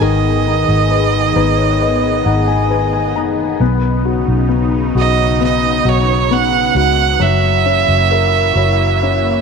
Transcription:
0.00 0.65 G#1 medium
0.00 3.57 D#3 medium
0.00 7.16 B3 medium
0.00 0.47 D#4 soft
0.00 3.57 G#4 medium
0.00 0.91 B4 soft
0.00 3.17 D#5 medium
0.47 1.35 D#4 soft
0.68 1.32 G#1 medium
0.91 1.35 B4 soft
1.36 2.22 G#1 medium
1.36 2.24 D#4 soft
1.36 1.57 B4 medium
1.58 1.79 C#5 soft
1.81 2.69 B4 soft
1.81 2.23 D#5 medium
2.25 3.16 G#1 medium
2.25 3.14 D#4 soft
2.25 2.47 F#5 soft
2.48 2.69 G#5 medium
2.71 3.58 B4 soft
2.71 2.92 G#5 medium
2.93 3.14 G#5 medium
3.16 3.58 F#1 medium
3.16 3.59 D#4 soft
3.16 3.57 A#5 medium
3.60 4.23 B1 medium
3.60 7.16 C#3 medium
3.60 4.47 B3 medium
3.60 7.17 D#4 medium
4.05 4.94 F#4 soft
4.28 4.91 B1 medium
4.49 5.39 B3 soft
4.95 5.81 B1 medium
4.95 5.84 F#4 soft
4.95 5.39 D#5 medium
5.41 6.29 B3 soft
5.41 5.91 D#5 medium
5.85 6.71 B1 medium
5.85 6.74 F#4 soft
5.89 6.34 C#5 medium
6.31 7.17 B3 soft
6.31 6.76 F#5 medium
6.75 7.17 C#2 medium
6.75 7.19 F#4 soft
6.75 7.23 F#5 medium
7.20 7.83 F#1 medium
7.20 9.41 F#3 medium
7.20 9.41 A#3 medium
7.20 9.41 E4 medium
7.20 9.41 F#4 medium
7.20 9.41 E5 medium
7.66 9.01 C#4 soft
7.88 8.52 F#1 medium
8.11 9.41 A#4 soft
8.55 9.41 F#1 medium
8.55 9.41 C#5 soft
9.03 9.41 C#4 soft

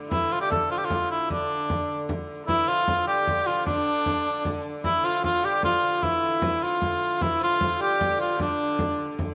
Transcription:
0.00 2.49 D3 medium
0.11 0.31 E3 medium
0.11 0.34 E4 medium
0.11 frame drum medium
0.32 0.41 F3 medium
0.32 0.41 F4 medium
0.41 0.50 G3 medium
0.41 0.50 G4 medium
0.50 0.70 A3 medium
0.50 0.69 A4 medium
0.50 frame drum medium
0.69 0.83 F3 medium
0.69 0.79 F4 medium
0.69 frame drum soft
0.78 0.86 G4 medium
0.84 1.31 F3 medium
0.84 1.10 F4 medium
0.90 frame drum medium
1.11 1.29 E4 medium
1.30 2.05 D3 medium
1.30 2.05 D4 medium
1.30 frame drum medium
1.70 frame drum medium
1.89 frame drum soft
2.09 frame drum medium
2.29 frame drum soft
2.48 7.21 D3 medium
2.48 2.68 E3 medium
2.48 2.69 E4 loud
2.48 2.66 E4 medium
2.48 frame drum medium
2.67 2.87 F3 medium
2.67 3.04 F4 loud
2.67 3.07 F4 loud
2.87 3.07 F3 medium
2.87 frame drum medium
3.06 3.47 G3 medium
3.06 3.25 G4 medium
3.06 3.48 G4 medium
3.06 frame drum soft
3.26 3.47 G4 medium
3.26 frame drum medium
3.46 3.67 F3 medium
3.46 3.66 F4 medium
3.46 3.66 F4 loud
3.65 4.45 D3 medium
3.65 4.64 D4 medium
3.65 4.61 D4 loud
3.65 frame drum medium
4.06 frame drum medium
4.25 frame drum soft
4.45 4.64 D3 medium
4.45 frame drum medium
4.84 5.05 E3 medium
4.84 5.02 E4 medium
4.84 5.06 E4 loud
4.84 frame drum medium
5.04 5.22 F3 medium
5.04 5.22 F4 medium
5.04 5.24 F4 medium
5.23 5.44 F3 medium
5.23 5.44 F4 medium
5.23 5.46 F4 medium
5.23 frame drum medium
5.43 5.63 G3 medium
5.43 5.63 G4 medium
5.43 5.64 G4 medium
5.43 frame drum soft
5.63 5.82 F3 medium
5.63 6.00 F4 medium
5.63 6.05 F4 loud
5.63 frame drum medium
5.84 6.04 F3 medium
6.03 6.41 E3 medium
6.03 6.64 E4 medium
6.03 frame drum medium
6.22 frame drum soft
6.42 6.62 E3 medium
6.42 frame drum medium
6.62 7.23 F3 medium
6.62 7.00 F4 medium
6.62 7.23 F4 medium
6.82 frame drum medium
7.00 7.22 F4 medium
7.21 9.34 D3 medium
7.21 7.41 E3 medium
7.21 7.41 E4 medium
7.21 frame drum medium
7.40 7.59 F3 medium
7.40 7.79 F4 medium
7.40 7.79 F4 loud
7.60 7.80 F3 medium
7.60 frame drum medium
7.79 7.98 G3 medium
7.79 8.20 G4 medium
7.79 8.18 G4 loud
7.79 frame drum soft
7.99 8.19 G3 medium
7.99 frame drum medium
8.18 8.40 F3 medium
8.18 8.39 F4 medium
8.18 8.38 F4 medium
8.37 9.07 D3 medium
8.37 8.89 D4 medium
8.37 frame drum medium
8.41 9.08 D4 medium
8.79 frame drum loud
8.90 8.99 D4 soft
8.99 frame drum soft
9.19 frame drum medium

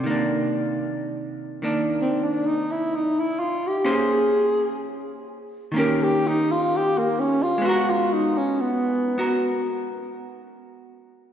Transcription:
0.00 3.81 C3 soft
0.00 1.61 D#3 soft
0.06 1.62 A#3 soft
0.06 1.63 D4 soft
1.62 3.84 D#3 soft
1.62 3.84 A#3 soft
1.62 3.85 D4 soft
2.01 2.26 C4 medium
2.25 2.48 D4 medium
2.47 2.73 D#4 medium
2.72 2.97 E4 medium
2.95 3.21 D#4 medium
3.20 3.41 E4 medium
3.40 3.69 F4 medium
3.67 3.92 G4 medium
3.84 5.73 A#3 soft
3.84 5.74 C#4 medium
3.84 5.74 G#4 soft
3.84 5.74 C5 medium
3.91 4.82 G#4 medium
5.72 7.61 D#3 medium
5.72 7.58 A#3 medium
5.76 7.61 C#4 medium
5.76 7.64 G4 medium
5.76 6.05 A#4 medium
6.03 6.28 G4 medium
6.27 6.53 D#4 medium
6.52 6.78 F4 medium
6.76 7.00 G4 loud
6.98 7.21 A#3 medium
7.20 7.44 C#4 medium
7.43 7.68 F4 medium
7.58 11.33 G#3 medium
7.58 9.17 B3 medium
7.65 9.18 F#4 medium
7.65 7.91 F#4 loud
7.65 9.19 A#4 medium
7.90 8.15 F4 medium
8.13 8.39 D#4 medium
8.38 8.62 C#4 medium
8.61 9.52 B3 medium
9.18 11.33 B3 soft
9.18 11.33 F#4 soft
9.18 11.33 A#4 soft

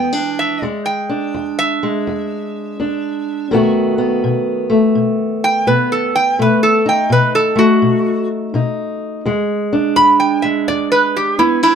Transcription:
0.00 0.57 E2 medium
0.00 0.59 E3 medium
0.00 0.59 G#3 medium
0.00 0.13 B3 medium
0.00 0.60 G#4 medium
0.00 0.37 G5 medium
0.13 0.62 D4 soft
0.39 0.62 E5 medium
0.62 1.29 E2 medium
0.62 1.81 G#3 medium
0.62 0.86 D5 medium
0.86 1.56 G5 medium
1.09 2.79 D4 medium
1.34 2.01 E2 medium
1.59 3.70 E5 loud
1.83 3.48 G#3 medium
2.07 2.74 E2 medium
2.80 3.46 E2 medium
2.80 3.48 D4 medium
3.51 4.18 B2 medium
3.51 6.35 D#3 medium
3.51 4.69 A3 medium
3.51 3.98 B3 medium
3.51 6.37 F#4 medium
3.98 5.67 B3 medium
4.24 4.90 B2 medium
4.70 6.35 A3 medium
4.95 5.61 B2 medium
5.44 5.66 G5 loud
5.67 6.33 B2 medium
5.67 6.85 B3 medium
5.67 5.90 B4 medium
5.92 6.14 A4 medium
6.15 6.38 G5 medium
6.39 7.05 B2 medium
6.39 7.54 A3 medium
6.39 6.63 B4 medium
6.63 6.86 A4 medium
6.86 8.54 D#4 medium
6.86 7.11 G5 medium
7.10 7.77 B2 medium
7.10 7.34 B4 medium
7.35 7.58 A4 medium
7.56 9.22 A3 medium
7.56 8.28 F#4 medium
7.82 8.48 B2 medium
8.54 9.20 B2 medium
8.54 9.23 D#4 medium
9.26 9.92 E2 medium
9.26 10.43 G#3 medium
9.73 11.38 D4 medium
9.96 10.63 E2 medium
9.96 10.20 B5 loud
10.20 10.43 G5 medium
10.42 11.75 G#3 medium
10.42 10.67 E5 medium
10.68 11.35 E2 medium
10.68 10.91 D5 medium
10.92 11.15 B4 loud
11.16 11.40 G4 medium
11.39 11.75 E2 medium
11.39 11.63 B3 medium
11.39 11.62 E4 medium
11.63 11.75 D4 medium
11.63 11.75 E4 loud

